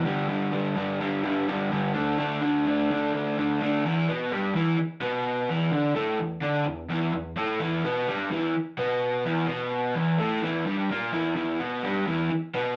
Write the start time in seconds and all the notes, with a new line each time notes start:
Already playing: B3
0.04 G2 D3 G3
0.29 G2 D3 G3
0.52 G2 D3 G3
0.76 G2 D3 G3
1.00 G2 D3 G3
1.23 G2 D3 G3
1.48 G2 D3 G3
1.71 G2 D3 G3
1.94 D3 A3 D4
2.18 D3 A3 D4
2.41 D3 A3 D4
2.66 D3 A3 D4
2.91 D3 A3 D4
3.13 D3 A3 D4
3.38 D3 A3 D4
3.61 D3 A3 D4
3.84 E2 E3
4.08 B2 B3
4.32 G2 G3
4.55 E2 E3
4.79 muted overdriven electric guitar stroke
5.01 B2 B3
5.49 E2 E3
5.71 D3 D4
5.95 A2 A3
6.19 E2
6.42 D3 D4
6.67 E2
6.90 E2 E3
7.14 E2
7.36 A2 A3
7.60 E2 E3
7.83 B2 B3
8.07 G2 G3
8.31 E2 E3
8.55 muted overdriven electric guitar stroke
8.78 B2 B3
9.25 E2 E3
9.47 B2 B3
9.95 E2 E3
10.18 A2 A3
10.42 E2 E3
10.65 G2 G3
10.90 A#2 A#3
11.13 E2 E3
11.36 E2 E3
11.59 B2 B3
11.83 G2 G3
12.07 E2 E3
12.31 muted overdriven electric guitar stroke
12.54 B2 B3